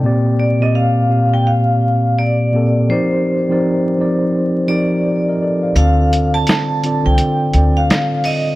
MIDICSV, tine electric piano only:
0, 0, Header, 1, 2, 480
1, 0, Start_track
1, 0, Tempo, 714286
1, 22, Time_signature, 4, 2, 24, 8
1, 5748, End_track
2, 0, Start_track
2, 0, Title_t, "Tine electric piano"
2, 0, Program_c, 0, 4
2, 0, Control_c, 0, 64, 127
2, 0, Note_on_c, 0, 79, 58
2, 19, Note_on_c, 0, 46, 92
2, 24, Note_on_c, 0, 58, 81
2, 30, Control_c, 0, 64, 0
2, 30, Note_on_c, 0, 60, 83
2, 36, Note_on_c, 0, 67, 78
2, 43, Note_on_c, 0, 74, 104
2, 156, Note_off_c, 0, 79, 0
2, 157, Control_c, 0, 64, 127
2, 255, Note_off_c, 0, 46, 0
2, 257, Note_off_c, 0, 58, 0
2, 260, Note_off_c, 0, 60, 0
2, 263, Note_off_c, 0, 67, 0
2, 267, Note_off_c, 0, 74, 0
2, 402, Note_on_c, 0, 46, 79
2, 408, Note_on_c, 0, 58, 74
2, 413, Note_on_c, 0, 60, 79
2, 420, Note_on_c, 0, 67, 71
2, 425, Note_on_c, 0, 74, 93
2, 638, Note_off_c, 0, 46, 0
2, 641, Note_off_c, 0, 58, 0
2, 643, Note_off_c, 0, 60, 0
2, 647, Note_off_c, 0, 67, 0
2, 649, Note_off_c, 0, 74, 0
2, 726, Note_on_c, 0, 46, 70
2, 732, Note_on_c, 0, 58, 62
2, 737, Note_on_c, 0, 60, 60
2, 742, Note_on_c, 0, 67, 68
2, 747, Note_on_c, 0, 77, 78
2, 1379, Note_off_c, 0, 46, 0
2, 1383, Note_off_c, 0, 58, 0
2, 1385, Note_off_c, 0, 60, 0
2, 1387, Note_off_c, 0, 67, 0
2, 1390, Note_off_c, 0, 77, 0
2, 1695, Note_on_c, 0, 46, 74
2, 1701, Note_on_c, 0, 58, 63
2, 1706, Note_on_c, 0, 60, 70
2, 1711, Note_on_c, 0, 67, 70
2, 1719, Note_on_c, 0, 69, 87
2, 1876, Note_off_c, 0, 46, 0
2, 1879, Note_off_c, 0, 58, 0
2, 1881, Note_off_c, 0, 60, 0
2, 1884, Note_off_c, 0, 67, 0
2, 1888, Note_off_c, 0, 69, 0
2, 1940, Note_on_c, 0, 53, 80
2, 1944, Note_on_c, 0, 60, 74
2, 1951, Control_c, 0, 64, 0
2, 1951, Note_on_c, 0, 63, 86
2, 1957, Note_on_c, 0, 67, 82
2, 1959, Note_on_c, 0, 70, 81
2, 1964, Note_on_c, 0, 74, 103
2, 2060, Control_c, 0, 64, 127
2, 2175, Note_off_c, 0, 53, 0
2, 2177, Note_off_c, 0, 60, 0
2, 2181, Note_off_c, 0, 63, 0
2, 2183, Note_off_c, 0, 67, 0
2, 2185, Note_off_c, 0, 70, 0
2, 2187, Note_off_c, 0, 74, 0
2, 2343, Note_on_c, 0, 53, 76
2, 2346, Note_on_c, 0, 60, 76
2, 2353, Note_on_c, 0, 63, 75
2, 2357, Note_on_c, 0, 67, 73
2, 2361, Note_on_c, 0, 70, 69
2, 2366, Note_on_c, 0, 74, 88
2, 2568, Note_off_c, 0, 53, 0
2, 2570, Note_off_c, 0, 60, 0
2, 2573, Note_off_c, 0, 63, 0
2, 2575, Note_off_c, 0, 67, 0
2, 2577, Note_off_c, 0, 70, 0
2, 2580, Note_off_c, 0, 74, 0
2, 2672, Note_on_c, 0, 53, 64
2, 2677, Note_on_c, 0, 60, 63
2, 2680, Note_on_c, 0, 63, 65
2, 2686, Note_on_c, 0, 67, 60
2, 2692, Note_on_c, 0, 70, 61
2, 2695, Note_on_c, 0, 74, 87
2, 2995, Note_off_c, 0, 53, 0
2, 2997, Note_off_c, 0, 60, 0
2, 2999, Note_off_c, 0, 63, 0
2, 3002, Note_off_c, 0, 67, 0
2, 3005, Note_off_c, 0, 70, 0
2, 3006, Note_off_c, 0, 74, 0
2, 3139, Note_on_c, 0, 53, 73
2, 3143, Note_on_c, 0, 60, 64
2, 3149, Note_on_c, 0, 63, 69
2, 3152, Note_on_c, 0, 67, 75
2, 3158, Note_on_c, 0, 70, 66
2, 3162, Note_on_c, 0, 74, 80
2, 3387, Note_off_c, 0, 67, 0
2, 3390, Note_off_c, 0, 70, 0
2, 3392, Note_off_c, 0, 74, 0
2, 3397, Note_on_c, 0, 72, 60
2, 3400, Note_on_c, 0, 67, 51
2, 3534, Note_off_c, 0, 72, 0
2, 3535, Note_off_c, 0, 67, 0
2, 3551, Note_on_c, 0, 75, 64
2, 3556, Note_on_c, 0, 70, 60
2, 3609, Note_off_c, 0, 53, 0
2, 3611, Note_off_c, 0, 60, 0
2, 3614, Note_off_c, 0, 63, 0
2, 3626, Note_off_c, 0, 75, 0
2, 3629, Note_off_c, 0, 70, 0
2, 3643, Note_on_c, 0, 74, 61
2, 3648, Note_on_c, 0, 69, 59
2, 3777, Note_off_c, 0, 74, 0
2, 3780, Note_off_c, 0, 69, 0
2, 3783, Note_on_c, 0, 77, 57
2, 3786, Note_on_c, 0, 72, 52
2, 3864, Note_on_c, 0, 50, 103
2, 3870, Control_c, 0, 64, 0
2, 3870, Note_on_c, 0, 60, 100
2, 3874, Note_on_c, 0, 65, 96
2, 3882, Note_on_c, 0, 69, 101
2, 3887, Note_on_c, 0, 74, 107
2, 4005, Control_c, 0, 64, 127
2, 4006, Note_off_c, 0, 77, 0
2, 4008, Note_off_c, 0, 72, 0
2, 4331, Note_off_c, 0, 50, 0
2, 4334, Note_off_c, 0, 60, 0
2, 4336, Note_off_c, 0, 65, 0
2, 4340, Note_off_c, 0, 69, 0
2, 4343, Note_off_c, 0, 74, 0
2, 4591, Note_on_c, 0, 50, 72
2, 4597, Note_on_c, 0, 60, 68
2, 4602, Note_on_c, 0, 65, 71
2, 4609, Note_on_c, 0, 69, 62
2, 4612, Note_on_c, 0, 74, 87
2, 4684, Note_off_c, 0, 50, 0
2, 4687, Note_off_c, 0, 60, 0
2, 4690, Note_off_c, 0, 65, 0
2, 4693, Note_off_c, 0, 69, 0
2, 4695, Note_off_c, 0, 74, 0
2, 4723, Note_on_c, 0, 50, 64
2, 4727, Note_on_c, 0, 60, 58
2, 4735, Note_on_c, 0, 65, 66
2, 4739, Note_on_c, 0, 69, 65
2, 4745, Note_on_c, 0, 72, 68
2, 4958, Note_off_c, 0, 50, 0
2, 4960, Note_off_c, 0, 60, 0
2, 4964, Note_off_c, 0, 65, 0
2, 4966, Note_off_c, 0, 69, 0
2, 4969, Note_off_c, 0, 72, 0
2, 5070, Note_on_c, 0, 50, 69
2, 5076, Note_on_c, 0, 60, 63
2, 5082, Note_on_c, 0, 65, 57
2, 5088, Note_on_c, 0, 69, 61
2, 5093, Note_on_c, 0, 74, 76
2, 5534, Note_off_c, 0, 50, 0
2, 5538, Note_off_c, 0, 60, 0
2, 5540, Note_off_c, 0, 65, 0
2, 5543, Note_off_c, 0, 69, 0
2, 5546, Note_off_c, 0, 74, 0
2, 5748, End_track
0, 0, End_of_file